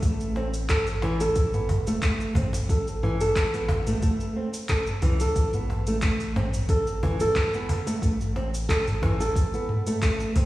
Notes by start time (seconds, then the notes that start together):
0.02 A1 A3, kick, open hi-hat, shaker
0.20 shaker
0.36 C4, cajon slap
0.54 open hi-hat, shaker
0.69 A4, kick, clap, mid tom, open hi-hat, shaker
0.87 open hi-hat, shaker
1.02 E3, cajon slap
1.20 A4, open hi-hat, shaker
1.36 A1, kick, open hi-hat, shaker
1.54 B3, cajon slap, mid tom, shaker
1.69 cajon bass, open hi-hat
1.87 E1 A3, open hi-hat, shaker
2.02 A3, kick, clap, open hi-hat, shaker
2.20 shaker
2.35 A1 C4, cajon bass, mid tom, open hi-hat
2.53 cajon slap, open hi-hat, shaker
2.69 A1 A4, kick, open hi-hat, shaker
2.88 shaker
3.03 E3, cajon slap, mid tom
3.21 A4, open hi-hat, shaker
3.36 kick, clap, open hi-hat, shaker
3.54 B3, open hi-hat, shaker
3.68 cajon bass, cajon slap
3.87 A3, mid tom, open hi-hat, shaker
4.03 A3, kick, open hi-hat, shaker
4.20 shaker
4.36 C4
4.54 open hi-hat, shaker
4.69 A4, kick, cajon slap, clap, mid tom, open hi-hat, shaker
4.87 shaker
5.02 C2 E3, cajon bass, open hi-hat
5.20 A4, open hi-hat, shaker
5.36 A1, kick, open hi-hat, shaker
5.53 B3, mid tom, shaker
5.70 cajon slap
5.87 A3, open hi-hat, shaker
6.02 A3, kick, clap, open hi-hat, shaker
6.20 open hi-hat, shaker
6.36 C4, cajon slap, mid tom
6.54 open hi-hat, shaker
6.69 A1 A4, kick, open hi-hat, shaker
6.87 cajon slap, shaker
7.03 E3, cajon bass
7.20 E1 A4, mid tom, open hi-hat, shaker
7.36 A1, kick, clap, open hi-hat, shaker
7.54 B3, shaker
7.69 cajon bass, open hi-hat
7.87 A3, cajon slap, open hi-hat, shaker
8.02 A1 A3, kick, mid tom, open hi-hat, shaker
8.21 shaker
8.36 C4, cajon slap
8.54 open hi-hat, shaker
8.69 A4, kick, clap, open hi-hat, shaker
8.87 mid tom, open hi-hat, shaker
9.02 E3, cajon bass, cajon slap
9.20 A4, open hi-hat, shaker
9.36 kick, open hi-hat, shaker
9.54 B3, shaker
9.69 mid tom
9.87 A3, open hi-hat, shaker
10.01 A3, kick, cajon slap, clap, open hi-hat, shaker
10.20 shaker
10.35 C2 C4, cajon bass, open hi-hat